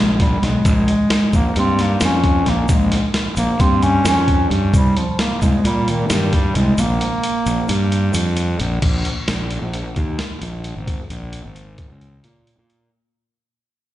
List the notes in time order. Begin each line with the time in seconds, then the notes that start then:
Already playing: A#1 G#3
0.20 G3, kick, snare, closed hi-hat
0.42 B1 G#3, snare, closed hi-hat
0.65 A#1, kick, closed hi-hat, shaker
0.88 closed hi-hat
1.10 snare, closed hi-hat
1.33 A#1 A#3, kick, closed hi-hat, shaker
1.56 G2 C4, closed hi-hat, shaker
1.79 A#3, snare, closed hi-hat, shaker
2.01 F2, snare, closed hi-hat, shaker
2.05 C#4
2.24 kick, closed hi-hat
2.46 A#1 A#3, snare, closed hi-hat
2.69 A#1 G#3, kick, closed hi-hat, shaker
2.92 snare, closed hi-hat
3.14 snare, closed hi-hat
3.36 A#1 A#3, closed hi-hat, shaker
3.60 G2 C4, kick, closed hi-hat, shaker
3.82 C#4, closed hi-hat, shaker
4.05 F2 C#4, snare, closed hi-hat, shaker
4.28 kick, closed hi-hat
4.50 G2, closed hi-hat
4.73 C2 G3, kick, closed hi-hat, shaker
4.97 F3, closed hi-hat
5.19 A#3, snare, closed hi-hat
5.42 C2 G#3, kick, closed hi-hat, shaker
5.64 A#2 G3, closed hi-hat, shaker
5.88 D#3, closed hi-hat, shaker
6.10 G2 D#3, snare, closed hi-hat, shaker
6.33 G3, kick, snare, closed hi-hat
6.55 C2 G#3, closed hi-hat
6.78 A#1 A#3, closed hi-hat, shaker
7.01 closed hi-hat
7.24 closed hi-hat, shaker
7.46 A#1, closed hi-hat, shaker
7.68 G2, closed hi-hat, shaker
7.92 closed hi-hat
8.14 F2, closed hi-hat, shaker
8.36 closed hi-hat, shaker
8.60 A#1, closed hi-hat
8.82 A#1, kick, closed hi-hat, crash
9.05 closed hi-hat
9.28 A#1, snare, closed hi-hat
9.51 closed hi-hat
9.62 A#1
9.74 closed hi-hat
9.96 D#2, kick, closed hi-hat
10.19 snare, closed hi-hat
10.41 A#1, closed hi-hat
10.64 closed hi-hat
10.77 G#1
10.87 kick, closed hi-hat
11.10 A#1, closed hi-hat
11.33 closed hi-hat
11.44 G#1
11.56 closed hi-hat
11.78 kick, closed hi-hat
11.90 C#2
12.01 closed hi-hat
12.24 A#2, closed hi-hat
12.47 closed hi-hat
12.58 A#2
12.70 closed hi-hat